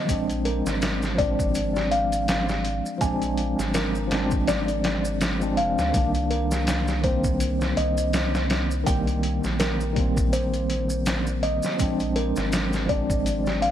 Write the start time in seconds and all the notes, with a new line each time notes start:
Already playing: G3 A#3 C4
0.05 A#1 F3 G#3, kick, closed hi-hat, maracas
0.10 C4 D4
0.30 closed hi-hat, maracas
0.45 A#4, closed hi-hat
0.66 G#1, snare, maracas
0.82 snare, closed hi-hat, maracas
1.02 snare, maracas
1.15 F3 G#3 D5, kick, closed hi-hat
1.20 C4 D4
1.39 kick, maracas
1.55 closed hi-hat, maracas
1.76 snare, maracas
1.91 F5, closed hi-hat
2.12 closed hi-hat, maracas
2.28 snare, closed hi-hat, maracas
2.49 snare, maracas
2.65 closed hi-hat
2.86 maracas
2.98 A#1 F3 G#3 G#5, kick, closed hi-hat, maracas
3.03 C4 D4
3.22 closed hi-hat, maracas
3.37 closed hi-hat
3.59 G#1, snare, maracas
3.74 A#4, snare, closed hi-hat, maracas
3.95 maracas
4.07 F3 G#3, closed hi-hat
4.12 C4 D4, snare
4.31 kick, maracas
4.47 D5, snare, closed hi-hat, maracas
4.68 closed hi-hat, maracas
4.84 snare, closed hi-hat
5.05 maracas
5.21 snare, closed hi-hat, maracas
5.40 F3 G#3 C4 D4, maracas
5.57 F1 F5, closed hi-hat
5.78 D2, snare, maracas
5.91 C2 D#3 G3, kick, closed hi-hat, maracas
5.95 A#3 D4
6.14 closed hi-hat, maracas
6.31 A#4, closed hi-hat
6.51 snare, maracas
6.67 snare, closed hi-hat, maracas
6.88 snare, maracas
7.01 D#3 G3 C5, kick, closed hi-hat
7.05 A#3 C4
7.24 kick, maracas
7.40 closed hi-hat, maracas
7.61 snare, maracas
7.77 C2 D#5, closed hi-hat
7.97 closed hi-hat, maracas
8.13 snare, closed hi-hat, maracas
8.35 snare, maracas
8.50 snare, closed hi-hat
8.71 maracas
8.83 C2 D#3 G3 G5, kick, closed hi-hat, maracas
8.88 A#3
9.07 closed hi-hat, maracas
9.23 closed hi-hat
9.44 A#1, snare, maracas
9.60 A#4, snare, closed hi-hat, maracas
9.81 maracas
9.93 D#3 G3, kick, closed hi-hat
9.97 A#3 C4
10.17 kick, maracas
10.33 C5, closed hi-hat, maracas
10.54 closed hi-hat, maracas
10.70 closed hi-hat
10.90 maracas
11.06 snare, closed hi-hat, maracas
11.27 maracas
11.43 D#5, closed hi-hat
11.63 snare, maracas
11.76 A#1 F3 G#3, kick, closed hi-hat, maracas
11.81 C4 D4
12.00 closed hi-hat, maracas
12.16 A#4, closed hi-hat
12.36 G#1, snare, maracas
12.52 snare, closed hi-hat, maracas
12.73 snare, maracas
12.86 F3 G#3 D5, kick, closed hi-hat
12.90 C4 D4
13.10 kick, maracas
13.26 closed hi-hat, maracas
13.46 snare, maracas
13.62 F5, closed hi-hat